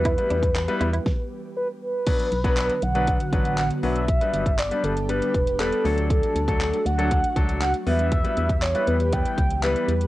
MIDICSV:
0, 0, Header, 1, 8, 480
1, 0, Start_track
1, 0, Key_signature, 2, "minor"
1, 0, Tempo, 504202
1, 48, Time_signature, 4, 2, 24, 8
1, 9588, End_track
2, 0, Start_track
2, 0, Title_t, "Soft synth lead"
2, 0, Program_c, 0, 80
2, 0, Note_on_c, 0, 71, 97
2, 1485, Note_off_c, 0, 71, 0
2, 1490, Note_on_c, 0, 71, 88
2, 1598, Note_off_c, 0, 71, 0
2, 1730, Note_on_c, 0, 71, 98
2, 2691, Note_on_c, 0, 78, 107
2, 2706, Note_off_c, 0, 71, 0
2, 3401, Note_off_c, 0, 78, 0
2, 3407, Note_on_c, 0, 78, 98
2, 3515, Note_off_c, 0, 78, 0
2, 3647, Note_on_c, 0, 76, 108
2, 4367, Note_on_c, 0, 74, 94
2, 4381, Note_off_c, 0, 76, 0
2, 4607, Note_on_c, 0, 69, 88
2, 4621, Note_off_c, 0, 74, 0
2, 4847, Note_on_c, 0, 71, 99
2, 4861, Note_off_c, 0, 69, 0
2, 5326, Note_on_c, 0, 69, 96
2, 5340, Note_off_c, 0, 71, 0
2, 5800, Note_off_c, 0, 69, 0
2, 5806, Note_on_c, 0, 69, 98
2, 6527, Note_on_c, 0, 78, 117
2, 6541, Note_off_c, 0, 69, 0
2, 7241, Note_off_c, 0, 78, 0
2, 7246, Note_on_c, 0, 78, 105
2, 7355, Note_off_c, 0, 78, 0
2, 7488, Note_on_c, 0, 76, 110
2, 8207, Note_on_c, 0, 73, 97
2, 8221, Note_off_c, 0, 76, 0
2, 8447, Note_on_c, 0, 71, 98
2, 8461, Note_off_c, 0, 73, 0
2, 8690, Note_on_c, 0, 79, 114
2, 8704, Note_off_c, 0, 71, 0
2, 9160, Note_off_c, 0, 79, 0
2, 9165, Note_on_c, 0, 71, 101
2, 9588, Note_off_c, 0, 71, 0
2, 9588, End_track
3, 0, Start_track
3, 0, Title_t, "Clean electric guitar"
3, 0, Program_c, 1, 27
3, 49, Note_on_c, 1, 64, 95
3, 133, Note_off_c, 1, 64, 0
3, 288, Note_on_c, 1, 62, 75
3, 372, Note_off_c, 1, 62, 0
3, 768, Note_on_c, 1, 64, 83
3, 852, Note_off_c, 1, 64, 0
3, 888, Note_on_c, 1, 64, 72
3, 972, Note_off_c, 1, 64, 0
3, 9588, End_track
4, 0, Start_track
4, 0, Title_t, "Grand piano"
4, 0, Program_c, 2, 0
4, 0, Note_on_c, 2, 55, 84
4, 0, Note_on_c, 2, 59, 76
4, 0, Note_on_c, 2, 64, 76
4, 0, Note_on_c, 2, 71, 92
4, 96, Note_off_c, 2, 55, 0
4, 97, Note_off_c, 2, 59, 0
4, 98, Note_off_c, 2, 64, 0
4, 99, Note_off_c, 2, 71, 0
4, 167, Note_on_c, 2, 55, 78
4, 168, Note_on_c, 2, 59, 70
4, 170, Note_on_c, 2, 64, 70
4, 171, Note_on_c, 2, 71, 84
4, 421, Note_off_c, 2, 55, 0
4, 422, Note_off_c, 2, 59, 0
4, 423, Note_off_c, 2, 64, 0
4, 424, Note_off_c, 2, 71, 0
4, 646, Note_on_c, 2, 55, 97
4, 649, Note_on_c, 2, 59, 82
4, 649, Note_on_c, 2, 64, 85
4, 652, Note_on_c, 2, 71, 105
4, 838, Note_off_c, 2, 55, 0
4, 839, Note_off_c, 2, 59, 0
4, 839, Note_off_c, 2, 64, 0
4, 840, Note_off_c, 2, 71, 0
4, 1966, Note_on_c, 2, 54, 86
4, 1968, Note_on_c, 2, 59, 76
4, 1969, Note_on_c, 2, 62, 80
4, 1970, Note_on_c, 2, 71, 94
4, 2158, Note_off_c, 2, 54, 0
4, 2158, Note_off_c, 2, 59, 0
4, 2159, Note_off_c, 2, 62, 0
4, 2160, Note_off_c, 2, 71, 0
4, 2326, Note_on_c, 2, 54, 104
4, 2327, Note_on_c, 2, 59, 97
4, 2329, Note_on_c, 2, 62, 93
4, 2330, Note_on_c, 2, 71, 113
4, 2581, Note_off_c, 2, 54, 0
4, 2582, Note_off_c, 2, 59, 0
4, 2582, Note_off_c, 2, 62, 0
4, 2583, Note_off_c, 2, 71, 0
4, 2808, Note_on_c, 2, 54, 92
4, 2808, Note_on_c, 2, 59, 82
4, 2810, Note_on_c, 2, 62, 79
4, 2813, Note_on_c, 2, 71, 96
4, 2998, Note_off_c, 2, 54, 0
4, 2999, Note_off_c, 2, 59, 0
4, 3000, Note_off_c, 2, 62, 0
4, 3001, Note_off_c, 2, 71, 0
4, 3167, Note_on_c, 2, 54, 88
4, 3169, Note_on_c, 2, 59, 79
4, 3170, Note_on_c, 2, 62, 78
4, 3172, Note_on_c, 2, 71, 98
4, 3421, Note_off_c, 2, 54, 0
4, 3422, Note_off_c, 2, 59, 0
4, 3423, Note_off_c, 2, 62, 0
4, 3424, Note_off_c, 2, 71, 0
4, 3646, Note_on_c, 2, 54, 87
4, 3646, Note_on_c, 2, 59, 78
4, 3648, Note_on_c, 2, 62, 77
4, 3649, Note_on_c, 2, 71, 95
4, 3837, Note_off_c, 2, 54, 0
4, 3838, Note_off_c, 2, 59, 0
4, 3838, Note_off_c, 2, 62, 0
4, 3839, Note_off_c, 2, 71, 0
4, 4006, Note_on_c, 2, 55, 80
4, 4008, Note_on_c, 2, 59, 72
4, 4010, Note_on_c, 2, 62, 69
4, 4011, Note_on_c, 2, 71, 86
4, 4261, Note_off_c, 2, 55, 0
4, 4262, Note_off_c, 2, 59, 0
4, 4263, Note_off_c, 2, 62, 0
4, 4264, Note_off_c, 2, 71, 0
4, 4485, Note_on_c, 2, 55, 82
4, 4487, Note_on_c, 2, 59, 73
4, 4489, Note_on_c, 2, 62, 75
4, 4490, Note_on_c, 2, 71, 88
4, 4677, Note_off_c, 2, 55, 0
4, 4678, Note_off_c, 2, 59, 0
4, 4679, Note_off_c, 2, 62, 0
4, 4679, Note_off_c, 2, 71, 0
4, 4845, Note_on_c, 2, 55, 78
4, 4846, Note_on_c, 2, 59, 67
4, 4848, Note_on_c, 2, 62, 66
4, 4851, Note_on_c, 2, 71, 84
4, 5101, Note_off_c, 2, 55, 0
4, 5101, Note_off_c, 2, 59, 0
4, 5102, Note_off_c, 2, 62, 0
4, 5103, Note_off_c, 2, 71, 0
4, 5327, Note_on_c, 2, 55, 92
4, 5328, Note_on_c, 2, 59, 80
4, 5330, Note_on_c, 2, 62, 80
4, 5332, Note_on_c, 2, 71, 99
4, 5555, Note_off_c, 2, 62, 0
4, 5566, Note_on_c, 2, 54, 83
4, 5568, Note_off_c, 2, 55, 0
4, 5568, Note_off_c, 2, 59, 0
4, 5568, Note_on_c, 2, 57, 77
4, 5570, Note_off_c, 2, 71, 0
4, 5570, Note_on_c, 2, 62, 79
4, 5571, Note_on_c, 2, 69, 93
4, 6047, Note_off_c, 2, 54, 0
4, 6048, Note_off_c, 2, 57, 0
4, 6049, Note_off_c, 2, 62, 0
4, 6049, Note_off_c, 2, 69, 0
4, 6167, Note_on_c, 2, 54, 91
4, 6168, Note_on_c, 2, 57, 82
4, 6170, Note_on_c, 2, 62, 79
4, 6172, Note_on_c, 2, 69, 96
4, 6421, Note_off_c, 2, 54, 0
4, 6422, Note_off_c, 2, 57, 0
4, 6423, Note_off_c, 2, 62, 0
4, 6424, Note_off_c, 2, 69, 0
4, 6646, Note_on_c, 2, 54, 88
4, 6648, Note_on_c, 2, 57, 82
4, 6650, Note_on_c, 2, 62, 83
4, 6652, Note_on_c, 2, 69, 98
4, 6837, Note_off_c, 2, 54, 0
4, 6838, Note_off_c, 2, 57, 0
4, 6839, Note_off_c, 2, 62, 0
4, 6840, Note_off_c, 2, 69, 0
4, 7008, Note_on_c, 2, 54, 90
4, 7009, Note_on_c, 2, 57, 85
4, 7011, Note_on_c, 2, 62, 85
4, 7012, Note_on_c, 2, 69, 99
4, 7262, Note_off_c, 2, 54, 0
4, 7263, Note_off_c, 2, 57, 0
4, 7263, Note_off_c, 2, 62, 0
4, 7264, Note_off_c, 2, 69, 0
4, 7487, Note_on_c, 2, 55, 84
4, 7489, Note_on_c, 2, 59, 76
4, 7490, Note_on_c, 2, 64, 75
4, 7492, Note_on_c, 2, 71, 94
4, 7775, Note_off_c, 2, 55, 0
4, 7777, Note_off_c, 2, 59, 0
4, 7777, Note_off_c, 2, 64, 0
4, 7778, Note_off_c, 2, 71, 0
4, 7844, Note_on_c, 2, 55, 78
4, 7846, Note_on_c, 2, 59, 72
4, 7847, Note_on_c, 2, 64, 75
4, 7849, Note_on_c, 2, 71, 90
4, 8100, Note_off_c, 2, 55, 0
4, 8101, Note_off_c, 2, 59, 0
4, 8102, Note_off_c, 2, 64, 0
4, 8102, Note_off_c, 2, 71, 0
4, 8325, Note_on_c, 2, 55, 80
4, 8328, Note_on_c, 2, 59, 78
4, 8329, Note_on_c, 2, 64, 76
4, 8331, Note_on_c, 2, 71, 91
4, 8517, Note_off_c, 2, 55, 0
4, 8518, Note_off_c, 2, 59, 0
4, 8519, Note_off_c, 2, 64, 0
4, 8520, Note_off_c, 2, 71, 0
4, 8686, Note_on_c, 2, 55, 76
4, 8688, Note_on_c, 2, 59, 71
4, 8688, Note_on_c, 2, 64, 68
4, 8691, Note_on_c, 2, 71, 86
4, 8941, Note_off_c, 2, 55, 0
4, 8942, Note_off_c, 2, 59, 0
4, 8942, Note_off_c, 2, 64, 0
4, 8943, Note_off_c, 2, 71, 0
4, 9164, Note_on_c, 2, 55, 90
4, 9165, Note_on_c, 2, 59, 78
4, 9167, Note_on_c, 2, 64, 81
4, 9169, Note_on_c, 2, 71, 97
4, 9420, Note_off_c, 2, 55, 0
4, 9420, Note_off_c, 2, 59, 0
4, 9422, Note_off_c, 2, 64, 0
4, 9423, Note_off_c, 2, 71, 0
4, 9588, End_track
5, 0, Start_track
5, 0, Title_t, "Ambient pad"
5, 0, Program_c, 3, 92
5, 0, Note_on_c, 3, 52, 88
5, 0, Note_on_c, 3, 55, 75
5, 0, Note_on_c, 3, 59, 75
5, 0, Note_on_c, 3, 67, 95
5, 997, Note_off_c, 3, 52, 0
5, 997, Note_off_c, 3, 59, 0
5, 997, Note_off_c, 3, 67, 0
5, 998, Note_off_c, 3, 55, 0
5, 1966, Note_on_c, 3, 59, 82
5, 1966, Note_on_c, 3, 66, 92
5, 1967, Note_on_c, 3, 50, 83
5, 1967, Note_on_c, 3, 54, 77
5, 3868, Note_off_c, 3, 50, 0
5, 3868, Note_off_c, 3, 54, 0
5, 3868, Note_off_c, 3, 66, 0
5, 3887, Note_on_c, 3, 62, 89
5, 3888, Note_on_c, 3, 55, 79
5, 3888, Note_on_c, 3, 67, 91
5, 5531, Note_off_c, 3, 59, 0
5, 5551, Note_off_c, 3, 55, 0
5, 5551, Note_off_c, 3, 67, 0
5, 5567, Note_on_c, 3, 54, 80
5, 5569, Note_on_c, 3, 57, 81
5, 5569, Note_on_c, 3, 66, 100
5, 7452, Note_off_c, 3, 62, 0
5, 7468, Note_off_c, 3, 54, 0
5, 7469, Note_off_c, 3, 57, 0
5, 7469, Note_off_c, 3, 66, 0
5, 7491, Note_on_c, 3, 52, 86
5, 7491, Note_on_c, 3, 67, 95
5, 7492, Note_on_c, 3, 55, 77
5, 7493, Note_on_c, 3, 59, 85
5, 9588, Note_off_c, 3, 52, 0
5, 9588, Note_off_c, 3, 55, 0
5, 9588, Note_off_c, 3, 59, 0
5, 9588, Note_off_c, 3, 67, 0
5, 9588, End_track
6, 0, Start_track
6, 0, Title_t, "FM bass"
6, 0, Program_c, 4, 39
6, 0, Note_on_c, 4, 40, 94
6, 167, Note_off_c, 4, 40, 0
6, 289, Note_on_c, 4, 40, 90
6, 647, Note_off_c, 4, 40, 0
6, 769, Note_on_c, 4, 40, 96
6, 948, Note_off_c, 4, 40, 0
6, 2209, Note_on_c, 4, 35, 92
6, 2567, Note_off_c, 4, 35, 0
6, 2689, Note_on_c, 4, 35, 96
6, 3047, Note_off_c, 4, 35, 0
6, 3165, Note_on_c, 4, 33, 102
6, 3525, Note_off_c, 4, 33, 0
6, 3649, Note_on_c, 4, 35, 93
6, 4007, Note_off_c, 4, 35, 0
6, 4129, Note_on_c, 4, 31, 92
6, 4487, Note_off_c, 4, 31, 0
6, 4607, Note_on_c, 4, 31, 97
6, 4966, Note_off_c, 4, 31, 0
6, 5087, Note_on_c, 4, 28, 108
6, 5446, Note_off_c, 4, 28, 0
6, 5568, Note_on_c, 4, 38, 97
6, 5926, Note_off_c, 4, 38, 0
6, 6047, Note_on_c, 4, 38, 97
6, 6406, Note_off_c, 4, 38, 0
6, 6528, Note_on_c, 4, 38, 97
6, 6887, Note_off_c, 4, 38, 0
6, 7008, Note_on_c, 4, 37, 103
6, 7367, Note_off_c, 4, 37, 0
6, 7490, Note_on_c, 4, 40, 98
6, 7848, Note_off_c, 4, 40, 0
6, 7970, Note_on_c, 4, 40, 96
6, 8328, Note_off_c, 4, 40, 0
6, 8450, Note_on_c, 4, 40, 100
6, 8808, Note_off_c, 4, 40, 0
6, 8928, Note_on_c, 4, 37, 105
6, 9287, Note_off_c, 4, 37, 0
6, 9407, Note_on_c, 4, 40, 95
6, 9588, Note_off_c, 4, 40, 0
6, 9588, End_track
7, 0, Start_track
7, 0, Title_t, "Muted clean electric guitar strokes"
7, 171, Note_on_c, 9, 29, 44
7, 266, Note_off_c, 9, 29, 0
7, 528, Note_on_c, 9, 29, 45
7, 623, Note_off_c, 9, 29, 0
7, 9588, End_track
8, 0, Start_track
8, 0, Title_t, "Drums"
8, 48, Note_on_c, 9, 36, 120
8, 48, Note_on_c, 9, 42, 97
8, 143, Note_off_c, 9, 42, 0
8, 144, Note_off_c, 9, 36, 0
8, 171, Note_on_c, 9, 42, 52
8, 266, Note_off_c, 9, 42, 0
8, 289, Note_on_c, 9, 42, 77
8, 384, Note_off_c, 9, 42, 0
8, 406, Note_on_c, 9, 36, 95
8, 411, Note_on_c, 9, 42, 57
8, 501, Note_off_c, 9, 36, 0
8, 506, Note_off_c, 9, 42, 0
8, 529, Note_on_c, 9, 39, 118
8, 532, Note_on_c, 9, 42, 99
8, 624, Note_off_c, 9, 39, 0
8, 627, Note_off_c, 9, 42, 0
8, 649, Note_on_c, 9, 42, 56
8, 744, Note_off_c, 9, 42, 0
8, 769, Note_on_c, 9, 42, 78
8, 864, Note_off_c, 9, 42, 0
8, 889, Note_on_c, 9, 42, 57
8, 985, Note_off_c, 9, 42, 0
8, 1009, Note_on_c, 9, 36, 112
8, 1009, Note_on_c, 9, 38, 94
8, 1104, Note_off_c, 9, 36, 0
8, 1104, Note_off_c, 9, 38, 0
8, 1966, Note_on_c, 9, 42, 97
8, 1966, Note_on_c, 9, 49, 104
8, 1968, Note_on_c, 9, 36, 125
8, 2061, Note_off_c, 9, 42, 0
8, 2061, Note_off_c, 9, 49, 0
8, 2063, Note_off_c, 9, 36, 0
8, 2089, Note_on_c, 9, 42, 54
8, 2185, Note_off_c, 9, 42, 0
8, 2207, Note_on_c, 9, 42, 78
8, 2302, Note_off_c, 9, 42, 0
8, 2325, Note_on_c, 9, 36, 94
8, 2328, Note_on_c, 9, 42, 54
8, 2420, Note_off_c, 9, 36, 0
8, 2423, Note_off_c, 9, 42, 0
8, 2445, Note_on_c, 9, 39, 117
8, 2448, Note_on_c, 9, 42, 101
8, 2541, Note_off_c, 9, 39, 0
8, 2543, Note_off_c, 9, 42, 0
8, 2566, Note_on_c, 9, 42, 60
8, 2661, Note_off_c, 9, 42, 0
8, 2686, Note_on_c, 9, 42, 79
8, 2781, Note_off_c, 9, 42, 0
8, 2808, Note_on_c, 9, 42, 54
8, 2903, Note_off_c, 9, 42, 0
8, 2925, Note_on_c, 9, 42, 96
8, 2930, Note_on_c, 9, 36, 87
8, 3021, Note_off_c, 9, 42, 0
8, 3025, Note_off_c, 9, 36, 0
8, 3047, Note_on_c, 9, 42, 61
8, 3142, Note_off_c, 9, 42, 0
8, 3166, Note_on_c, 9, 36, 102
8, 3167, Note_on_c, 9, 42, 65
8, 3261, Note_off_c, 9, 36, 0
8, 3262, Note_off_c, 9, 42, 0
8, 3285, Note_on_c, 9, 42, 59
8, 3380, Note_off_c, 9, 42, 0
8, 3406, Note_on_c, 9, 39, 121
8, 3407, Note_on_c, 9, 42, 92
8, 3501, Note_off_c, 9, 39, 0
8, 3502, Note_off_c, 9, 42, 0
8, 3526, Note_on_c, 9, 42, 54
8, 3622, Note_off_c, 9, 42, 0
8, 3647, Note_on_c, 9, 46, 76
8, 3742, Note_off_c, 9, 46, 0
8, 3766, Note_on_c, 9, 42, 54
8, 3861, Note_off_c, 9, 42, 0
8, 3887, Note_on_c, 9, 36, 127
8, 3887, Note_on_c, 9, 42, 97
8, 3982, Note_off_c, 9, 42, 0
8, 3983, Note_off_c, 9, 36, 0
8, 4010, Note_on_c, 9, 42, 55
8, 4105, Note_off_c, 9, 42, 0
8, 4127, Note_on_c, 9, 42, 79
8, 4223, Note_off_c, 9, 42, 0
8, 4245, Note_on_c, 9, 36, 95
8, 4249, Note_on_c, 9, 42, 56
8, 4340, Note_off_c, 9, 36, 0
8, 4344, Note_off_c, 9, 42, 0
8, 4367, Note_on_c, 9, 39, 114
8, 4370, Note_on_c, 9, 42, 109
8, 4463, Note_off_c, 9, 39, 0
8, 4465, Note_off_c, 9, 42, 0
8, 4486, Note_on_c, 9, 42, 58
8, 4581, Note_off_c, 9, 42, 0
8, 4607, Note_on_c, 9, 42, 77
8, 4702, Note_off_c, 9, 42, 0
8, 4729, Note_on_c, 9, 42, 57
8, 4824, Note_off_c, 9, 42, 0
8, 4847, Note_on_c, 9, 42, 98
8, 4942, Note_off_c, 9, 42, 0
8, 4970, Note_on_c, 9, 42, 61
8, 5065, Note_off_c, 9, 42, 0
8, 5087, Note_on_c, 9, 36, 100
8, 5090, Note_on_c, 9, 42, 65
8, 5182, Note_off_c, 9, 36, 0
8, 5185, Note_off_c, 9, 42, 0
8, 5209, Note_on_c, 9, 42, 57
8, 5304, Note_off_c, 9, 42, 0
8, 5331, Note_on_c, 9, 39, 118
8, 5332, Note_on_c, 9, 42, 93
8, 5426, Note_off_c, 9, 39, 0
8, 5427, Note_off_c, 9, 42, 0
8, 5450, Note_on_c, 9, 42, 50
8, 5545, Note_off_c, 9, 42, 0
8, 5571, Note_on_c, 9, 46, 76
8, 5666, Note_off_c, 9, 46, 0
8, 5690, Note_on_c, 9, 42, 58
8, 5785, Note_off_c, 9, 42, 0
8, 5809, Note_on_c, 9, 36, 127
8, 5810, Note_on_c, 9, 42, 94
8, 5904, Note_off_c, 9, 36, 0
8, 5905, Note_off_c, 9, 42, 0
8, 5932, Note_on_c, 9, 42, 54
8, 6027, Note_off_c, 9, 42, 0
8, 6051, Note_on_c, 9, 42, 80
8, 6146, Note_off_c, 9, 42, 0
8, 6167, Note_on_c, 9, 36, 93
8, 6172, Note_on_c, 9, 42, 57
8, 6262, Note_off_c, 9, 36, 0
8, 6268, Note_off_c, 9, 42, 0
8, 6290, Note_on_c, 9, 39, 118
8, 6293, Note_on_c, 9, 42, 100
8, 6386, Note_off_c, 9, 39, 0
8, 6388, Note_off_c, 9, 42, 0
8, 6411, Note_on_c, 9, 42, 59
8, 6507, Note_off_c, 9, 42, 0
8, 6531, Note_on_c, 9, 42, 75
8, 6626, Note_off_c, 9, 42, 0
8, 6652, Note_on_c, 9, 42, 60
8, 6747, Note_off_c, 9, 42, 0
8, 6769, Note_on_c, 9, 42, 97
8, 6772, Note_on_c, 9, 36, 94
8, 6865, Note_off_c, 9, 42, 0
8, 6867, Note_off_c, 9, 36, 0
8, 6891, Note_on_c, 9, 42, 61
8, 6987, Note_off_c, 9, 42, 0
8, 7008, Note_on_c, 9, 36, 102
8, 7010, Note_on_c, 9, 42, 62
8, 7103, Note_off_c, 9, 36, 0
8, 7105, Note_off_c, 9, 42, 0
8, 7129, Note_on_c, 9, 42, 58
8, 7224, Note_off_c, 9, 42, 0
8, 7248, Note_on_c, 9, 39, 117
8, 7249, Note_on_c, 9, 42, 94
8, 7343, Note_off_c, 9, 39, 0
8, 7344, Note_off_c, 9, 42, 0
8, 7368, Note_on_c, 9, 42, 52
8, 7463, Note_off_c, 9, 42, 0
8, 7489, Note_on_c, 9, 46, 75
8, 7584, Note_off_c, 9, 46, 0
8, 7607, Note_on_c, 9, 42, 55
8, 7702, Note_off_c, 9, 42, 0
8, 7727, Note_on_c, 9, 42, 101
8, 7728, Note_on_c, 9, 36, 123
8, 7822, Note_off_c, 9, 42, 0
8, 7824, Note_off_c, 9, 36, 0
8, 7850, Note_on_c, 9, 42, 55
8, 7945, Note_off_c, 9, 42, 0
8, 7967, Note_on_c, 9, 42, 79
8, 8063, Note_off_c, 9, 42, 0
8, 8086, Note_on_c, 9, 36, 94
8, 8089, Note_on_c, 9, 42, 53
8, 8181, Note_off_c, 9, 36, 0
8, 8184, Note_off_c, 9, 42, 0
8, 8207, Note_on_c, 9, 39, 117
8, 8210, Note_on_c, 9, 42, 101
8, 8303, Note_off_c, 9, 39, 0
8, 8305, Note_off_c, 9, 42, 0
8, 8328, Note_on_c, 9, 42, 59
8, 8423, Note_off_c, 9, 42, 0
8, 8447, Note_on_c, 9, 42, 77
8, 8542, Note_off_c, 9, 42, 0
8, 8568, Note_on_c, 9, 42, 56
8, 8663, Note_off_c, 9, 42, 0
8, 8688, Note_on_c, 9, 42, 99
8, 8692, Note_on_c, 9, 36, 92
8, 8783, Note_off_c, 9, 42, 0
8, 8787, Note_off_c, 9, 36, 0
8, 8811, Note_on_c, 9, 42, 60
8, 8906, Note_off_c, 9, 42, 0
8, 8928, Note_on_c, 9, 36, 102
8, 8931, Note_on_c, 9, 42, 65
8, 9023, Note_off_c, 9, 36, 0
8, 9027, Note_off_c, 9, 42, 0
8, 9049, Note_on_c, 9, 42, 58
8, 9144, Note_off_c, 9, 42, 0
8, 9170, Note_on_c, 9, 39, 126
8, 9171, Note_on_c, 9, 42, 95
8, 9265, Note_off_c, 9, 39, 0
8, 9266, Note_off_c, 9, 42, 0
8, 9291, Note_on_c, 9, 42, 51
8, 9386, Note_off_c, 9, 42, 0
8, 9411, Note_on_c, 9, 42, 74
8, 9506, Note_off_c, 9, 42, 0
8, 9529, Note_on_c, 9, 42, 55
8, 9588, Note_off_c, 9, 42, 0
8, 9588, End_track
0, 0, End_of_file